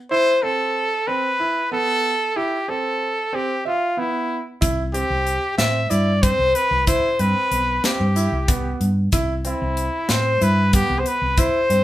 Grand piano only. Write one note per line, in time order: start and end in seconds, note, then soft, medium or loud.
0.11 0.31 E4 medium
0.43 0.82 C4 medium
1.07 1.27 C4 medium
1.40 1.60 E4 medium
1.72 2.11 B3 medium
2.36 2.56 E4 medium
2.68 3.08 C4 medium
3.33 3.53 C4 medium
3.65 3.85 E5 medium
3.97 4.37 B3 medium
4.61 4.81 E4 medium
4.94 5.33 C4 medium
5.58 5.78 C4 medium
5.90 6.10 E4 medium
6.23 6.62 C4 medium
6.87 7.07 E4 medium
7.19 7.59 C4 medium
7.84 8.04 C4 medium
8.16 8.36 E4 medium
8.48 8.87 B3 medium
9.13 9.32 E4 medium
9.45 9.84 C4 medium
10.09 10.29 C4 medium
10.41 10.61 E4 medium
10.73 11.12 B3 medium
11.38 11.57 E4 medium
11.70 11.84 C4 medium